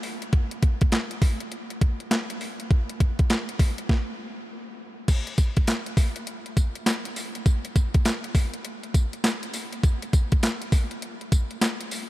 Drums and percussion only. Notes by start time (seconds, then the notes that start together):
0.03 open hi-hat
0.22 closed hi-hat
0.33 kick, closed hi-hat
0.51 closed hi-hat
0.63 kick, closed hi-hat
0.81 kick, closed hi-hat
0.92 snare, clap, closed hi-hat
1.11 closed hi-hat
1.22 kick, open hi-hat
1.40 closed hi-hat
1.52 closed hi-hat
1.70 closed hi-hat
1.81 kick, closed hi-hat
2.00 closed hi-hat
2.11 snare, clap, closed hi-hat
2.30 closed hi-hat
2.41 open hi-hat
2.60 closed hi-hat
2.71 kick, closed hi-hat
2.89 closed hi-hat
3.00 kick, closed hi-hat
3.19 kick, closed hi-hat
3.30 snare, clap, closed hi-hat
3.49 closed hi-hat
3.59 kick, open hi-hat
3.78 closed hi-hat
3.89 kick, snare
5.08 kick, closed hi-hat, crash, tambourine
5.27 closed hi-hat
5.38 kick, closed hi-hat, tambourine
5.57 kick, closed hi-hat
5.67 snare, clap, closed hi-hat, tambourine
5.86 closed hi-hat
5.97 kick, open hi-hat, tambourine
6.16 closed hi-hat
6.27 closed hi-hat
6.46 closed hi-hat
6.57 kick, closed hi-hat, tambourine
6.75 closed hi-hat
6.86 snare, clap, closed hi-hat, tambourine
7.05 closed hi-hat
7.16 open hi-hat, tambourine
7.35 closed hi-hat
7.46 kick, closed hi-hat, tambourine
7.65 closed hi-hat
7.76 kick, closed hi-hat, tambourine
7.94 kick, closed hi-hat
8.05 snare, clap, closed hi-hat, tambourine
8.24 closed hi-hat
8.35 kick, open hi-hat, tambourine
8.54 closed hi-hat
8.65 closed hi-hat
8.83 closed hi-hat
8.94 kick, closed hi-hat, tambourine
9.13 closed hi-hat
9.24 snare, clap, closed hi-hat, tambourine
9.43 closed hi-hat
9.53 open hi-hat, tambourine
9.73 closed hi-hat
9.83 kick, closed hi-hat, tambourine
10.02 closed hi-hat
10.13 kick, closed hi-hat, tambourine
10.32 kick, closed hi-hat
10.43 snare, clap, closed hi-hat, tambourine
10.62 closed hi-hat
10.72 kick, open hi-hat, tambourine
10.91 closed hi-hat
11.02 closed hi-hat
11.21 closed hi-hat
11.32 kick, closed hi-hat, tambourine
11.51 closed hi-hat
11.61 snare, clap, closed hi-hat, tambourine
11.81 closed hi-hat
11.91 open hi-hat, tambourine